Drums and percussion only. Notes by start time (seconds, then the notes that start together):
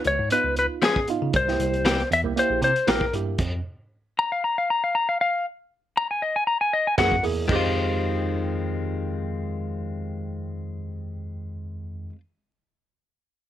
0.05 closed hi-hat
0.30 closed hi-hat
0.56 closed hi-hat
0.82 snare, closed hi-hat
0.96 kick
1.08 closed hi-hat
1.33 kick, closed hi-hat
1.48 snare
1.60 closed hi-hat
1.74 closed hi-hat
1.85 snare, closed hi-hat
2.00 closed hi-hat
2.12 closed hi-hat
2.37 closed hi-hat
2.62 closed hi-hat
2.76 closed hi-hat
2.88 snare, closed hi-hat
3.01 kick
3.13 closed hi-hat
3.38 kick, closed hi-hat, crash
6.98 kick, snare, closed hi-hat
7.12 kick
7.23 open hi-hat
7.49 kick, crash